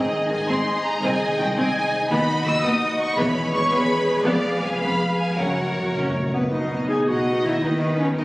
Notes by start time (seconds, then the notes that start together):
Already playing: G#2 D#4 G#4 D#5
0.03 D#3
0.13 G#3
0.21 D#4
0.29 G#1 G#2 D#3 C5 G#5
0.40 G#4
0.47 G#1 G#2 C4 D#5 C6
0.58 C6
0.67 D#5
0.76 G#4
0.83 C5 A#5
0.94 D#4
1.01 C2 C3 C4 G#5
1.13 C4
1.21 G#3
1.30 D#4
1.38 C2 D#3 C5 G5
1.48 G#4
1.55 C2 C4 D#5 G#5
1.67 C6
1.75 D#5
1.84 G#4
1.93 C5
2.02 D#4
2.10 D#2 D#3 B3 D#4 F#4 D#5 B5
2.20 F#3
2.29 D#4
2.37 B4
2.45 D#2 D#3 F#4 E6
2.55 D#5
2.63 D#2 B3 B5 D#6
2.73 F#5
2.82 B5
2.99 F#4 C#6
3.08 B4
3.16 E1 E2 B3 G#4 B4 C#5 B5
3.26 B2
3.35 G#3
3.45 C#4
3.52 E1 E2 E3 G#4 C#6
3.62 C#4
3.70 E1 E2 B3 C#5 B5
3.80 G#5
3.89 C#5
4.07 C#4
4.16 G#3
4.24 F1 F2 B3 D5 F5
4.35 F3
4.44 G#3
4.53 B3
4.61 F1 F2 F3 G#4 G#5
4.72 B3
4.79 F1 F2 B3 B4 B5
4.90 G#5
4.99 B4
5.09 G#4
5.17 B3 G#5
5.28 G#3
5.36 F#1 F#2 C#4 F#4 A#4 C#5 F#5
5.45 F#2 C#3
5.53 F#2 A#3
5.61 F#2
5.66 F#2 C#4
5.75 F#1 F#2 F#3 F#4
5.83 F#2 A#4
5.91 F#2 C#4
5.95 F#1 C#5
5.99 F#2
6.05 F#2 F#5
6.13 F#2 C#5
6.23 F#2 A#4
6.30 F#2 B2 B3 F#4 B4
6.38 F#2 B3
6.42 C#4 D#4
6.47 F#4
6.52 B1 B2 D#4 D#5
6.71 B3 D#4
6.89 G#4 G#5
7.07 B1 B2 F#4 D#5 F#5
7.26 B3 D#4
7.44 D#3 E4 E5
7.49 B3
7.53 D#4
7.58 D#2 D#4 F#4 B4
7.63 D#3 B3 D#4 D#5
7.81 B3 D#4
7.98 C#4 C#5
8.15 D#2 D#3 D#4 A#4 D#5